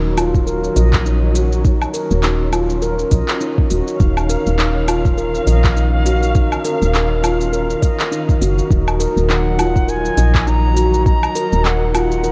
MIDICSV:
0, 0, Header, 1, 6, 480
1, 0, Start_track
1, 0, Key_signature, -6, "minor"
1, 0, Tempo, 588235
1, 1343, Time_signature, 4, 2, 24, 8
1, 10052, End_track
2, 0, Start_track
2, 0, Title_t, "Bansuri"
2, 0, Program_c, 0, 73
2, 7593, Note_on_c, 0, 78, 86
2, 8071, Note_on_c, 0, 80, 102
2, 8083, Note_off_c, 0, 78, 0
2, 8548, Note_on_c, 0, 82, 109
2, 8560, Note_off_c, 0, 80, 0
2, 9019, Note_off_c, 0, 82, 0
2, 9024, Note_on_c, 0, 82, 105
2, 9504, Note_on_c, 0, 78, 92
2, 9516, Note_off_c, 0, 82, 0
2, 9738, Note_off_c, 0, 78, 0
2, 9743, Note_on_c, 0, 78, 86
2, 10052, Note_off_c, 0, 78, 0
2, 10052, End_track
3, 0, Start_track
3, 0, Title_t, "Handpan"
3, 0, Program_c, 1, 114
3, 0, Note_on_c, 1, 63, 78
3, 132, Note_off_c, 1, 63, 0
3, 142, Note_on_c, 1, 65, 74
3, 274, Note_off_c, 1, 65, 0
3, 380, Note_on_c, 1, 70, 77
3, 612, Note_off_c, 1, 70, 0
3, 622, Note_on_c, 1, 75, 71
3, 853, Note_off_c, 1, 75, 0
3, 862, Note_on_c, 1, 63, 68
3, 1093, Note_off_c, 1, 63, 0
3, 1102, Note_on_c, 1, 66, 71
3, 1234, Note_off_c, 1, 66, 0
3, 1340, Note_on_c, 1, 63, 79
3, 1572, Note_off_c, 1, 63, 0
3, 1581, Note_on_c, 1, 70, 69
3, 1714, Note_off_c, 1, 70, 0
3, 1823, Note_on_c, 1, 63, 74
3, 2053, Note_off_c, 1, 63, 0
3, 2060, Note_on_c, 1, 65, 75
3, 2193, Note_off_c, 1, 65, 0
3, 2301, Note_on_c, 1, 70, 80
3, 2532, Note_off_c, 1, 70, 0
3, 2543, Note_on_c, 1, 75, 76
3, 2773, Note_off_c, 1, 75, 0
3, 2782, Note_on_c, 1, 63, 74
3, 3013, Note_off_c, 1, 63, 0
3, 3022, Note_on_c, 1, 66, 76
3, 3154, Note_off_c, 1, 66, 0
3, 3261, Note_on_c, 1, 63, 76
3, 3492, Note_off_c, 1, 63, 0
3, 3501, Note_on_c, 1, 70, 68
3, 3633, Note_off_c, 1, 70, 0
3, 3741, Note_on_c, 1, 63, 75
3, 3972, Note_off_c, 1, 63, 0
3, 3981, Note_on_c, 1, 65, 78
3, 4113, Note_off_c, 1, 65, 0
3, 4222, Note_on_c, 1, 70, 79
3, 4453, Note_off_c, 1, 70, 0
3, 4463, Note_on_c, 1, 75, 74
3, 4693, Note_off_c, 1, 75, 0
3, 4705, Note_on_c, 1, 63, 73
3, 4934, Note_off_c, 1, 63, 0
3, 4945, Note_on_c, 1, 66, 79
3, 5075, Note_off_c, 1, 66, 0
3, 5184, Note_on_c, 1, 63, 80
3, 5414, Note_off_c, 1, 63, 0
3, 5425, Note_on_c, 1, 70, 72
3, 5555, Note_off_c, 1, 70, 0
3, 5662, Note_on_c, 1, 63, 79
3, 5893, Note_off_c, 1, 63, 0
3, 5903, Note_on_c, 1, 65, 73
3, 6034, Note_off_c, 1, 65, 0
3, 6140, Note_on_c, 1, 70, 80
3, 6372, Note_off_c, 1, 70, 0
3, 6382, Note_on_c, 1, 75, 69
3, 6612, Note_off_c, 1, 75, 0
3, 6622, Note_on_c, 1, 63, 75
3, 6852, Note_off_c, 1, 63, 0
3, 6862, Note_on_c, 1, 66, 74
3, 6994, Note_off_c, 1, 66, 0
3, 7102, Note_on_c, 1, 63, 80
3, 7332, Note_off_c, 1, 63, 0
3, 7341, Note_on_c, 1, 70, 70
3, 7474, Note_off_c, 1, 70, 0
3, 7581, Note_on_c, 1, 63, 79
3, 7812, Note_off_c, 1, 63, 0
3, 7822, Note_on_c, 1, 65, 72
3, 7954, Note_off_c, 1, 65, 0
3, 8064, Note_on_c, 1, 70, 75
3, 8293, Note_off_c, 1, 70, 0
3, 8304, Note_on_c, 1, 75, 72
3, 8534, Note_off_c, 1, 75, 0
3, 8543, Note_on_c, 1, 63, 72
3, 8773, Note_off_c, 1, 63, 0
3, 8781, Note_on_c, 1, 66, 74
3, 8914, Note_off_c, 1, 66, 0
3, 9024, Note_on_c, 1, 63, 80
3, 9254, Note_off_c, 1, 63, 0
3, 9264, Note_on_c, 1, 70, 73
3, 9395, Note_off_c, 1, 70, 0
3, 9503, Note_on_c, 1, 63, 78
3, 9733, Note_off_c, 1, 63, 0
3, 9745, Note_on_c, 1, 65, 76
3, 9876, Note_off_c, 1, 65, 0
3, 9983, Note_on_c, 1, 70, 76
3, 10052, Note_off_c, 1, 70, 0
3, 10052, End_track
4, 0, Start_track
4, 0, Title_t, "String section"
4, 0, Program_c, 2, 48
4, 0, Note_on_c, 2, 51, 69
4, 0, Note_on_c, 2, 54, 77
4, 0, Note_on_c, 2, 61, 62
4, 3259, Note_off_c, 2, 54, 0
4, 3265, Note_on_c, 2, 77, 81
4, 7073, Note_off_c, 2, 61, 0
4, 7099, Note_off_c, 2, 77, 0
4, 7106, Note_on_c, 2, 63, 64
4, 7107, Note_on_c, 2, 54, 77
4, 10052, Note_off_c, 2, 51, 0
4, 10052, Note_off_c, 2, 54, 0
4, 10052, Note_off_c, 2, 63, 0
4, 10052, End_track
5, 0, Start_track
5, 0, Title_t, "FM bass"
5, 0, Program_c, 3, 39
5, 0, Note_on_c, 3, 27, 82
5, 559, Note_off_c, 3, 27, 0
5, 623, Note_on_c, 3, 34, 77
5, 1519, Note_off_c, 3, 34, 0
5, 1721, Note_on_c, 3, 27, 86
5, 2479, Note_off_c, 3, 27, 0
5, 2543, Note_on_c, 3, 34, 90
5, 2627, Note_off_c, 3, 34, 0
5, 3025, Note_on_c, 3, 27, 78
5, 3108, Note_off_c, 3, 27, 0
5, 3262, Note_on_c, 3, 27, 94
5, 3554, Note_off_c, 3, 27, 0
5, 3643, Note_on_c, 3, 27, 80
5, 4400, Note_off_c, 3, 27, 0
5, 4462, Note_on_c, 3, 34, 76
5, 5359, Note_off_c, 3, 34, 0
5, 5564, Note_on_c, 3, 27, 83
5, 6321, Note_off_c, 3, 27, 0
5, 6864, Note_on_c, 3, 30, 95
5, 7024, Note_off_c, 3, 30, 0
5, 7104, Note_on_c, 3, 27, 91
5, 7395, Note_off_c, 3, 27, 0
5, 7481, Note_on_c, 3, 27, 85
5, 8239, Note_off_c, 3, 27, 0
5, 8302, Note_on_c, 3, 34, 81
5, 9199, Note_off_c, 3, 34, 0
5, 9404, Note_on_c, 3, 27, 81
5, 10052, Note_off_c, 3, 27, 0
5, 10052, End_track
6, 0, Start_track
6, 0, Title_t, "Drums"
6, 143, Note_on_c, 9, 46, 87
6, 143, Note_on_c, 9, 77, 68
6, 144, Note_on_c, 9, 82, 67
6, 225, Note_off_c, 9, 46, 0
6, 225, Note_off_c, 9, 77, 0
6, 226, Note_off_c, 9, 82, 0
6, 282, Note_on_c, 9, 36, 91
6, 284, Note_on_c, 9, 82, 29
6, 363, Note_off_c, 9, 36, 0
6, 366, Note_off_c, 9, 82, 0
6, 385, Note_on_c, 9, 82, 43
6, 467, Note_off_c, 9, 82, 0
6, 522, Note_on_c, 9, 82, 29
6, 604, Note_off_c, 9, 82, 0
6, 622, Note_on_c, 9, 46, 80
6, 623, Note_on_c, 9, 82, 69
6, 704, Note_off_c, 9, 46, 0
6, 705, Note_off_c, 9, 82, 0
6, 759, Note_on_c, 9, 39, 77
6, 760, Note_on_c, 9, 82, 31
6, 761, Note_on_c, 9, 36, 103
6, 841, Note_off_c, 9, 39, 0
6, 842, Note_off_c, 9, 82, 0
6, 843, Note_off_c, 9, 36, 0
6, 864, Note_on_c, 9, 82, 42
6, 945, Note_off_c, 9, 82, 0
6, 1102, Note_on_c, 9, 46, 90
6, 1103, Note_on_c, 9, 82, 74
6, 1184, Note_off_c, 9, 46, 0
6, 1185, Note_off_c, 9, 82, 0
6, 1242, Note_on_c, 9, 82, 31
6, 1324, Note_off_c, 9, 82, 0
6, 1343, Note_on_c, 9, 36, 112
6, 1343, Note_on_c, 9, 82, 45
6, 1424, Note_off_c, 9, 36, 0
6, 1425, Note_off_c, 9, 82, 0
6, 1481, Note_on_c, 9, 77, 64
6, 1482, Note_on_c, 9, 82, 30
6, 1562, Note_off_c, 9, 77, 0
6, 1563, Note_off_c, 9, 82, 0
6, 1581, Note_on_c, 9, 46, 86
6, 1582, Note_on_c, 9, 82, 80
6, 1663, Note_off_c, 9, 46, 0
6, 1664, Note_off_c, 9, 82, 0
6, 1720, Note_on_c, 9, 82, 29
6, 1802, Note_off_c, 9, 82, 0
6, 1820, Note_on_c, 9, 39, 73
6, 1821, Note_on_c, 9, 82, 43
6, 1902, Note_off_c, 9, 39, 0
6, 1902, Note_off_c, 9, 82, 0
6, 2061, Note_on_c, 9, 46, 80
6, 2061, Note_on_c, 9, 77, 68
6, 2062, Note_on_c, 9, 82, 75
6, 2143, Note_off_c, 9, 46, 0
6, 2143, Note_off_c, 9, 77, 0
6, 2144, Note_off_c, 9, 82, 0
6, 2200, Note_on_c, 9, 82, 29
6, 2282, Note_off_c, 9, 82, 0
6, 2301, Note_on_c, 9, 82, 47
6, 2382, Note_off_c, 9, 82, 0
6, 2440, Note_on_c, 9, 82, 31
6, 2521, Note_off_c, 9, 82, 0
6, 2540, Note_on_c, 9, 46, 79
6, 2541, Note_on_c, 9, 82, 69
6, 2542, Note_on_c, 9, 36, 107
6, 2622, Note_off_c, 9, 46, 0
6, 2623, Note_off_c, 9, 82, 0
6, 2624, Note_off_c, 9, 36, 0
6, 2679, Note_on_c, 9, 39, 74
6, 2680, Note_on_c, 9, 82, 33
6, 2760, Note_off_c, 9, 39, 0
6, 2761, Note_off_c, 9, 82, 0
6, 2781, Note_on_c, 9, 82, 42
6, 2862, Note_off_c, 9, 82, 0
6, 2921, Note_on_c, 9, 36, 106
6, 3003, Note_off_c, 9, 36, 0
6, 3021, Note_on_c, 9, 46, 89
6, 3022, Note_on_c, 9, 82, 74
6, 3102, Note_off_c, 9, 46, 0
6, 3103, Note_off_c, 9, 82, 0
6, 3161, Note_on_c, 9, 82, 33
6, 3243, Note_off_c, 9, 82, 0
6, 3263, Note_on_c, 9, 36, 124
6, 3263, Note_on_c, 9, 82, 44
6, 3344, Note_off_c, 9, 82, 0
6, 3345, Note_off_c, 9, 36, 0
6, 3401, Note_on_c, 9, 77, 67
6, 3402, Note_on_c, 9, 82, 29
6, 3483, Note_off_c, 9, 77, 0
6, 3484, Note_off_c, 9, 82, 0
6, 3503, Note_on_c, 9, 46, 82
6, 3504, Note_on_c, 9, 82, 83
6, 3585, Note_off_c, 9, 46, 0
6, 3585, Note_off_c, 9, 82, 0
6, 3643, Note_on_c, 9, 82, 32
6, 3724, Note_off_c, 9, 82, 0
6, 3743, Note_on_c, 9, 39, 72
6, 3744, Note_on_c, 9, 82, 42
6, 3825, Note_off_c, 9, 39, 0
6, 3826, Note_off_c, 9, 82, 0
6, 3984, Note_on_c, 9, 46, 79
6, 3984, Note_on_c, 9, 77, 67
6, 3985, Note_on_c, 9, 82, 75
6, 4066, Note_off_c, 9, 46, 0
6, 4066, Note_off_c, 9, 77, 0
6, 4067, Note_off_c, 9, 82, 0
6, 4123, Note_on_c, 9, 36, 93
6, 4124, Note_on_c, 9, 82, 31
6, 4204, Note_off_c, 9, 36, 0
6, 4206, Note_off_c, 9, 82, 0
6, 4226, Note_on_c, 9, 82, 43
6, 4307, Note_off_c, 9, 82, 0
6, 4363, Note_on_c, 9, 82, 33
6, 4445, Note_off_c, 9, 82, 0
6, 4465, Note_on_c, 9, 46, 80
6, 4465, Note_on_c, 9, 82, 71
6, 4546, Note_off_c, 9, 46, 0
6, 4547, Note_off_c, 9, 82, 0
6, 4603, Note_on_c, 9, 36, 106
6, 4603, Note_on_c, 9, 39, 74
6, 4604, Note_on_c, 9, 82, 30
6, 4684, Note_off_c, 9, 39, 0
6, 4685, Note_off_c, 9, 36, 0
6, 4685, Note_off_c, 9, 82, 0
6, 4706, Note_on_c, 9, 82, 44
6, 4788, Note_off_c, 9, 82, 0
6, 4945, Note_on_c, 9, 46, 84
6, 4946, Note_on_c, 9, 82, 79
6, 5027, Note_off_c, 9, 46, 0
6, 5028, Note_off_c, 9, 82, 0
6, 5084, Note_on_c, 9, 82, 34
6, 5166, Note_off_c, 9, 82, 0
6, 5184, Note_on_c, 9, 82, 44
6, 5185, Note_on_c, 9, 36, 120
6, 5266, Note_off_c, 9, 82, 0
6, 5267, Note_off_c, 9, 36, 0
6, 5323, Note_on_c, 9, 77, 68
6, 5324, Note_on_c, 9, 82, 29
6, 5405, Note_off_c, 9, 77, 0
6, 5406, Note_off_c, 9, 82, 0
6, 5424, Note_on_c, 9, 46, 78
6, 5425, Note_on_c, 9, 82, 77
6, 5506, Note_off_c, 9, 46, 0
6, 5507, Note_off_c, 9, 82, 0
6, 5565, Note_on_c, 9, 82, 30
6, 5647, Note_off_c, 9, 82, 0
6, 5666, Note_on_c, 9, 39, 71
6, 5667, Note_on_c, 9, 82, 40
6, 5748, Note_off_c, 9, 39, 0
6, 5749, Note_off_c, 9, 82, 0
6, 5905, Note_on_c, 9, 46, 70
6, 5905, Note_on_c, 9, 77, 70
6, 5906, Note_on_c, 9, 82, 74
6, 5987, Note_off_c, 9, 46, 0
6, 5987, Note_off_c, 9, 77, 0
6, 5988, Note_off_c, 9, 82, 0
6, 6044, Note_on_c, 9, 82, 31
6, 6125, Note_off_c, 9, 82, 0
6, 6146, Note_on_c, 9, 82, 43
6, 6227, Note_off_c, 9, 82, 0
6, 6285, Note_on_c, 9, 82, 31
6, 6366, Note_off_c, 9, 82, 0
6, 6385, Note_on_c, 9, 36, 102
6, 6385, Note_on_c, 9, 46, 73
6, 6386, Note_on_c, 9, 82, 71
6, 6467, Note_off_c, 9, 36, 0
6, 6467, Note_off_c, 9, 46, 0
6, 6468, Note_off_c, 9, 82, 0
6, 6524, Note_on_c, 9, 39, 69
6, 6525, Note_on_c, 9, 82, 32
6, 6605, Note_off_c, 9, 39, 0
6, 6606, Note_off_c, 9, 82, 0
6, 6626, Note_on_c, 9, 82, 43
6, 6708, Note_off_c, 9, 82, 0
6, 6763, Note_on_c, 9, 36, 103
6, 6765, Note_on_c, 9, 82, 30
6, 6845, Note_off_c, 9, 36, 0
6, 6847, Note_off_c, 9, 82, 0
6, 6867, Note_on_c, 9, 46, 85
6, 6868, Note_on_c, 9, 82, 77
6, 6949, Note_off_c, 9, 46, 0
6, 6950, Note_off_c, 9, 82, 0
6, 7006, Note_on_c, 9, 82, 31
6, 7088, Note_off_c, 9, 82, 0
6, 7105, Note_on_c, 9, 36, 108
6, 7109, Note_on_c, 9, 82, 43
6, 7186, Note_off_c, 9, 36, 0
6, 7191, Note_off_c, 9, 82, 0
6, 7245, Note_on_c, 9, 77, 71
6, 7246, Note_on_c, 9, 82, 30
6, 7327, Note_off_c, 9, 77, 0
6, 7327, Note_off_c, 9, 82, 0
6, 7347, Note_on_c, 9, 46, 80
6, 7348, Note_on_c, 9, 82, 77
6, 7428, Note_off_c, 9, 46, 0
6, 7429, Note_off_c, 9, 82, 0
6, 7486, Note_on_c, 9, 82, 30
6, 7568, Note_off_c, 9, 82, 0
6, 7586, Note_on_c, 9, 39, 63
6, 7587, Note_on_c, 9, 82, 40
6, 7668, Note_off_c, 9, 39, 0
6, 7669, Note_off_c, 9, 82, 0
6, 7825, Note_on_c, 9, 46, 80
6, 7825, Note_on_c, 9, 77, 72
6, 7826, Note_on_c, 9, 82, 68
6, 7907, Note_off_c, 9, 46, 0
6, 7907, Note_off_c, 9, 77, 0
6, 7908, Note_off_c, 9, 82, 0
6, 7963, Note_on_c, 9, 36, 88
6, 7965, Note_on_c, 9, 82, 32
6, 8045, Note_off_c, 9, 36, 0
6, 8047, Note_off_c, 9, 82, 0
6, 8067, Note_on_c, 9, 82, 44
6, 8149, Note_off_c, 9, 82, 0
6, 8204, Note_on_c, 9, 82, 30
6, 8286, Note_off_c, 9, 82, 0
6, 8303, Note_on_c, 9, 46, 76
6, 8304, Note_on_c, 9, 82, 73
6, 8385, Note_off_c, 9, 46, 0
6, 8386, Note_off_c, 9, 82, 0
6, 8442, Note_on_c, 9, 36, 97
6, 8444, Note_on_c, 9, 39, 68
6, 8445, Note_on_c, 9, 82, 30
6, 8524, Note_off_c, 9, 36, 0
6, 8525, Note_off_c, 9, 39, 0
6, 8526, Note_off_c, 9, 82, 0
6, 8545, Note_on_c, 9, 82, 41
6, 8626, Note_off_c, 9, 82, 0
6, 8785, Note_on_c, 9, 46, 82
6, 8786, Note_on_c, 9, 82, 75
6, 8866, Note_off_c, 9, 46, 0
6, 8867, Note_off_c, 9, 82, 0
6, 8925, Note_on_c, 9, 82, 30
6, 9006, Note_off_c, 9, 82, 0
6, 9023, Note_on_c, 9, 36, 102
6, 9026, Note_on_c, 9, 82, 39
6, 9105, Note_off_c, 9, 36, 0
6, 9107, Note_off_c, 9, 82, 0
6, 9164, Note_on_c, 9, 77, 75
6, 9165, Note_on_c, 9, 82, 29
6, 9246, Note_off_c, 9, 77, 0
6, 9247, Note_off_c, 9, 82, 0
6, 9265, Note_on_c, 9, 46, 89
6, 9266, Note_on_c, 9, 82, 77
6, 9346, Note_off_c, 9, 46, 0
6, 9347, Note_off_c, 9, 82, 0
6, 9405, Note_on_c, 9, 82, 27
6, 9486, Note_off_c, 9, 82, 0
6, 9507, Note_on_c, 9, 39, 72
6, 9508, Note_on_c, 9, 82, 36
6, 9588, Note_off_c, 9, 39, 0
6, 9589, Note_off_c, 9, 82, 0
6, 9746, Note_on_c, 9, 46, 85
6, 9746, Note_on_c, 9, 77, 69
6, 9747, Note_on_c, 9, 82, 64
6, 9828, Note_off_c, 9, 46, 0
6, 9828, Note_off_c, 9, 77, 0
6, 9829, Note_off_c, 9, 82, 0
6, 9885, Note_on_c, 9, 82, 30
6, 9966, Note_off_c, 9, 82, 0
6, 9985, Note_on_c, 9, 82, 45
6, 10052, Note_off_c, 9, 82, 0
6, 10052, End_track
0, 0, End_of_file